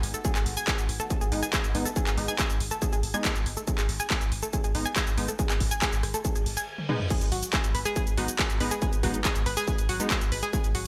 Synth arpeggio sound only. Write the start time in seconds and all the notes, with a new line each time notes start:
0.14 A4
0.25 G#4
0.36 G#4
0.57 G#5
0.68 G#4
1.00 A4
1.10 G#4
1.21 G#4
1.43 G#5
1.53 G#4
1.85 A4
1.96 G#4
2.07 G#4
2.28 G#5
2.39 G#4
2.71 A4
2.82 G#4
2.93 G#4
3.14 G#5
3.25 G#4
3.57 A4
3.68 G#4
3.78 G#4
4.00 G#5
4.10 G#4
4.43 A4
4.53 G#4
4.64 G#4
4.86 G#5
4.96 G#4
5.28 A4
5.39 G#4
5.50 G#4
5.71 G#5
5.82 G#4
6.14 A4
6.25 G#4
6.36 G#4
6.57 G#5
7.10 G#4
7.32 F#4
7.53 G#4
7.75 B4
7.85 G#4
7.96 G#4
8.17 F#4
8.39 G#4
8.61 B4
8.71 G#4
8.82 G#4
9.03 F#4
9.25 G#4
9.46 B4
9.57 G#4
9.68 G#4
9.89 F#4
10.11 G#4
10.32 B4
10.43 G#4
10.53 G#4
10.75 F#4